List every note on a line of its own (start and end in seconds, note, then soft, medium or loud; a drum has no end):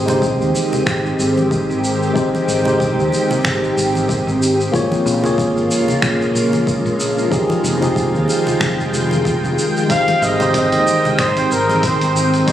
0.00 0.40 G#1 medium
0.00 4.70 D#3 medium
0.00 0.06 G#3 medium
0.00 4.70 G#3 medium
0.00 4.70 C4 medium
0.00 0.07 D#4 medium
0.00 0.08 G4 medium
0.00 4.70 G4 medium
0.00 0.10 C5 medium
0.06 0.17 G#3 medium
0.06 0.18 D#4 medium
0.06 0.19 G4 medium
0.06 0.19 C5 medium
0.06 low conga loud
0.06 cabasa soft
0.22 kick medium
0.22 cabasa soft
0.40 0.50 D#2 medium
0.40 cabasa soft
0.55 high conga medium
0.55 cabasa medium
0.73 low conga medium
0.73 cabasa soft
0.86 1.11 G#1 medium
0.86 finger snap medium
0.86 kick loud
0.86 cabasa soft
1.06 cabasa soft
1.19 1.62 G#1 medium
1.19 cabasa medium
1.37 high conga medium
1.37 cabasa soft
1.51 kick loud
1.51 cabasa soft
1.70 2.10 G#1 medium
1.70 cabasa soft
1.84 cabasa medium
2.02 cabasa soft
2.14 2.61 G#3 medium
2.14 2.61 D#4 medium
2.14 2.62 G4 medium
2.14 2.63 C5 medium
2.14 kick loud
2.14 cabasa soft
2.35 high conga medium
2.35 cabasa soft
2.48 2.98 G#1 medium
2.48 cabasa medium
2.64 2.76 G#3 medium
2.64 2.76 D#4 medium
2.64 2.77 G4 medium
2.64 2.77 C5 medium
2.64 low conga medium
2.64 cabasa soft
2.80 kick loud
2.80 cabasa soft
2.98 3.09 D#2 medium
2.98 cabasa soft
3.12 high conga medium
3.12 cabasa medium
3.31 low conga loud
3.31 cabasa soft
3.45 3.70 G#1 medium
3.45 finger snap medium
3.45 kick loud
3.45 cabasa soft
3.64 cabasa soft
3.77 4.20 G#1 medium
3.77 cabasa medium
3.95 high conga medium
3.95 cabasa soft
4.09 kick loud
4.09 cabasa soft
4.27 4.68 G#1 medium
4.27 cabasa soft
4.42 cabasa medium
4.60 cabasa soft
4.72 7.29 C#3 medium
4.72 12.52 G#3 medium
4.72 5.19 A#3 medium
4.72 7.29 A#3 medium
4.72 5.19 F4 medium
4.72 7.29 F4 medium
4.72 5.20 G#4 medium
4.72 5.21 C#5 medium
4.72 kick loud
4.72 cabasa soft
4.92 high conga medium
4.92 cabasa soft
5.06 5.56 A#1 medium
5.06 cabasa medium
5.22 5.34 A#3 medium
5.22 5.34 F4 medium
5.22 5.35 G#4 medium
5.22 5.35 C#5 medium
5.22 low conga loud
5.22 cabasa soft
5.38 kick loud
5.38 cabasa soft
5.56 5.67 G#1 medium
5.56 cabasa soft
5.71 high conga medium
5.71 cabasa medium
5.88 low conga medium
5.88 cabasa soft
6.02 6.27 A#1 medium
6.02 finger snap medium
6.02 kick loud
6.02 cabasa soft
6.21 cabasa soft
6.35 6.78 A#1 medium
6.35 cabasa medium
6.53 high conga medium
6.53 cabasa soft
6.67 kick loud
6.67 cabasa soft
6.85 7.26 A#1 medium
6.85 cabasa soft
7.00 cabasa medium
7.18 cabasa soft
7.30 12.52 D#3 medium
7.30 7.77 F3 medium
7.30 7.77 D#4 medium
7.30 9.87 F4 medium
7.30 7.78 G4 medium
7.30 7.79 G#4 medium
7.30 12.52 G5 medium
7.30 kick loud
7.30 cabasa soft
7.50 high conga medium
7.50 cabasa soft
7.64 8.16 F1 medium
7.64 cabasa medium
7.80 7.92 F3 medium
7.80 7.92 D#4 medium
7.80 7.93 G4 medium
7.80 7.94 G#4 medium
7.80 low conga medium
7.80 cabasa soft
7.96 kick loud
7.96 cabasa soft
8.15 8.25 D#2 medium
8.15 cabasa soft
8.28 high conga medium
8.28 cabasa medium
8.47 low conga medium
8.47 cabasa soft
8.61 8.86 F1 medium
8.61 finger snap medium
8.61 kick loud
8.61 cabasa soft
8.80 cabasa soft
8.93 9.36 F1 medium
8.93 cabasa medium
9.11 high conga medium
9.11 cabasa soft
9.25 kick loud
9.25 cabasa soft
9.43 9.54 F1 medium
9.43 cabasa soft
9.58 cabasa medium
9.77 cabasa soft
9.88 10.35 G#3 medium
9.88 12.52 C4 medium
9.88 10.36 D#4 medium
9.88 10.36 G4 medium
9.88 10.37 C5 medium
9.88 10.25 F5 loud
9.88 kick medium
9.88 closed hi-hat medium
9.88 cabasa soft
10.08 closed hi-hat soft
10.08 high conga medium
10.08 cabasa soft
10.22 10.74 G#1 medium
10.22 10.55 D#5 medium
10.22 cabasa medium
10.38 10.50 G#3 medium
10.38 10.50 D#4 medium
10.38 10.51 G4 medium
10.38 10.52 C5 medium
10.38 closed hi-hat soft
10.38 low conga medium
10.38 cabasa soft
10.54 11.22 D#5 medium
10.54 kick medium
10.54 closed hi-hat medium
10.54 cabasa soft
10.72 10.83 D#2 medium
10.72 closed hi-hat soft
10.72 cabasa soft
10.87 high conga medium
10.87 cabasa medium
11.05 low conga medium
11.05 cabasa soft
11.19 11.44 G#1 medium
11.19 11.54 C5 medium
11.19 finger snap medium
11.19 kick loud
11.19 closed hi-hat medium
11.19 cabasa soft
11.37 closed hi-hat soft
11.37 cabasa soft
11.51 11.94 G#1 medium
11.51 11.84 A#4 medium
11.51 cabasa medium
11.70 high conga medium
11.70 cabasa soft
11.83 12.51 C5 medium
11.83 kick loud
11.83 closed hi-hat medium
11.83 cabasa soft
12.01 12.42 G#1 medium
12.01 closed hi-hat soft
12.01 cabasa soft
12.16 cabasa medium
12.34 closed hi-hat soft
12.34 cabasa soft
12.46 12.52 G#3 medium
12.46 12.52 D#4 medium
12.46 12.52 G4 medium
12.46 12.52 D#5 loud
12.46 kick loud
12.46 closed hi-hat medium
12.46 cabasa soft